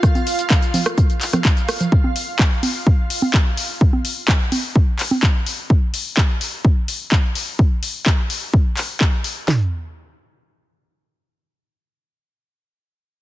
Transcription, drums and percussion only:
0.03 kick loud
0.03 cross-stick medium
0.03 closed hi-hat soft
0.03 shaker soft
0.15 closed hi-hat soft
0.15 high conga medium
0.15 shaker soft
0.27 open hi-hat loud
0.27 shaker medium
0.39 closed hi-hat soft
0.39 shaker soft
0.50 kick loud
0.50 cross-stick soft
0.50 clap loud
0.50 closed hi-hat soft
0.50 shaker soft
0.62 closed hi-hat soft
0.62 shaker soft
0.74 open hi-hat medium
0.74 high conga medium
0.74 low conga medium
0.74 shaker medium
0.86 cross-stick medium
0.86 closed hi-hat soft
0.86 shaker soft
0.98 kick loud
0.98 closed hi-hat medium
0.98 shaker soft
1.10 closed hi-hat soft
1.10 shaker soft
1.21 clap soft
1.21 open hi-hat loud
1.21 shaker medium
1.33 cross-stick soft
1.33 closed hi-hat soft
1.33 high conga medium
1.33 low conga medium
1.33 shaker soft
1.45 kick loud
1.45 clap loud
1.45 closed hi-hat soft
1.45 shaker soft
1.57 closed hi-hat soft
1.57 shaker soft
1.69 cross-stick medium
1.69 open hi-hat medium
1.69 shaker medium
1.80 closed hi-hat soft
1.80 low conga medium
1.80 shaker soft
1.92 kick loud
2.04 high conga medium
2.16 open hi-hat loud
2.39 kick loud
2.39 clap loud
2.63 open hi-hat loud
2.63 high conga medium
2.87 kick loud
3.10 open hi-hat loud
3.22 high conga medium
3.34 kick loud
3.34 clap loud
3.57 open hi-hat medium
3.81 kick loud
3.93 high conga medium
4.05 open hi-hat loud
4.28 kick medium
4.28 clap loud
4.52 open hi-hat medium
4.52 high conga medium
4.76 kick loud
4.99 clap soft
4.99 open hi-hat loud
5.11 high conga medium
5.23 kick loud
5.23 clap loud
5.46 open hi-hat medium
5.70 kick loud
5.94 open hi-hat medium
6.17 kick medium
6.17 clap loud
6.41 open hi-hat medium
6.65 kick loud
6.88 open hi-hat medium
7.12 kick medium
7.12 clap loud
7.35 open hi-hat medium
7.59 kick loud
7.83 open hi-hat medium
8.06 kick loud
8.06 clap loud
8.30 open hi-hat medium
8.54 kick loud
8.77 clap soft
8.77 open hi-hat medium
9.01 kick loud
9.01 clap loud
9.24 open hi-hat medium
9.48 snare medium
9.48 floor tom medium

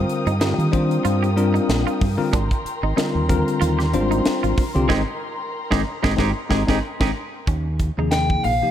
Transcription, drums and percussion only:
0.09 closed hi-hat soft
0.27 closed hi-hat soft
0.41 snare loud
0.41 closed hi-hat medium
0.60 closed hi-hat soft
0.73 kick medium
0.73 closed hi-hat medium
0.91 closed hi-hat soft
1.05 closed hi-hat medium
1.24 closed hi-hat soft
1.38 closed hi-hat medium
1.56 closed hi-hat soft
1.70 snare loud
1.70 closed hi-hat medium
1.88 closed hi-hat soft
2.01 kick medium
2.01 open hi-hat medium
2.33 kick loud
2.33 closed hi-hat medium
2.51 kick medium
2.51 closed hi-hat soft
2.66 closed hi-hat medium
2.98 snare loud
2.98 closed hi-hat medium
3.29 kick medium
3.29 closed hi-hat medium
3.48 closed hi-hat soft
3.62 closed hi-hat medium
3.80 snare soft
3.80 closed hi-hat soft
3.94 closed hi-hat medium
4.12 closed hi-hat soft
4.25 snare loud
4.25 closed hi-hat medium
4.44 closed hi-hat soft
4.58 kick medium
4.58 open hi-hat medium
4.76 closed hi-hat soft
4.90 kick medium
4.90 snare medium
5.72 kick medium
5.72 snare medium
6.04 kick loud
6.04 snare loud
6.18 kick medium
6.18 snare medium
6.51 kick medium
6.51 snare medium
6.69 kick medium
6.69 snare medium
7.01 kick medium
7.01 snare medium
7.47 kick loud
7.47 closed hi-hat medium
7.79 kick medium
7.79 closed hi-hat medium
8.12 snare medium
8.12 closed hi-hat medium
8.30 kick medium
8.44 open hi-hat medium

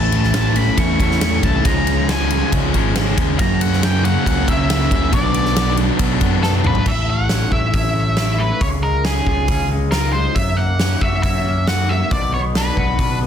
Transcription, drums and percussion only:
0.12 ride medium
0.23 snare soft
0.34 snare loud
0.34 ride loud
0.56 ride medium
0.78 kick medium
0.78 ride medium
1.00 kick medium
1.00 ride medium
1.11 snare soft
1.21 snare loud
1.21 ride loud
1.43 kick medium
1.43 ride medium
1.65 kick loud
1.65 ride medium
1.87 ride medium
2.09 snare loud
2.09 ride loud
2.30 ride medium
2.52 kick medium
2.52 ride loud
2.74 kick medium
2.74 ride medium
2.96 snare medium
2.96 ride loud
3.18 kick medium
3.18 ride medium
3.39 kick loud
3.39 ride loud
3.61 ride medium
3.73 snare soft
3.83 snare loud
3.83 ride medium
4.05 ride medium
4.26 kick medium
4.26 ride loud
4.48 kick medium
4.48 ride medium
4.70 snare loud
4.70 ride medium
4.91 kick medium
4.91 ride medium
5.13 kick loud
5.13 ride medium
5.34 ride medium
5.45 snare soft
5.56 snare loud
5.56 ride loud
5.77 ride medium
5.99 kick medium
5.99 ride loud
6.21 kick medium
6.21 ride medium
6.43 snare medium
6.64 mid tom medium
6.75 floor tom medium
6.86 kick loud
6.86 crash medium
7.29 snare medium
7.29 open hi-hat soft
7.52 kick medium
7.73 kick medium
7.73 open hi-hat soft
8.17 snare medium
8.17 open hi-hat soft
8.61 kick medium
8.61 open hi-hat soft
9.04 snare loud
9.04 open hi-hat soft
9.27 kick medium
9.48 kick loud
9.48 open hi-hat soft
9.92 snare medium
9.92 open hi-hat soft
10.36 kick medium
10.36 open hi-hat soft
10.79 snare medium
10.79 open hi-hat soft
11.01 kick medium
11.23 kick loud
11.23 open hi-hat soft
11.67 snare medium
11.67 open hi-hat soft
12.11 kick medium
12.11 open hi-hat soft
12.55 snare loud
12.55 open hi-hat soft
12.77 kick medium
12.99 kick medium
12.99 open hi-hat soft

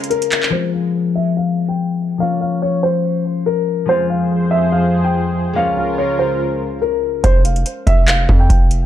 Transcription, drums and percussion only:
0.04 closed hi-hat medium
0.11 closed hi-hat soft
0.22 closed hi-hat medium
0.32 clap loud
0.32 closed hi-hat medium
0.43 clap medium
7.24 kick loud
7.24 closed hi-hat medium
7.45 closed hi-hat medium
7.56 closed hi-hat soft
7.66 closed hi-hat medium
7.87 kick loud
7.87 closed hi-hat medium
8.08 clap loud
8.08 closed hi-hat medium
8.29 kick loud
8.50 kick loud
8.50 closed hi-hat medium
8.71 closed hi-hat medium

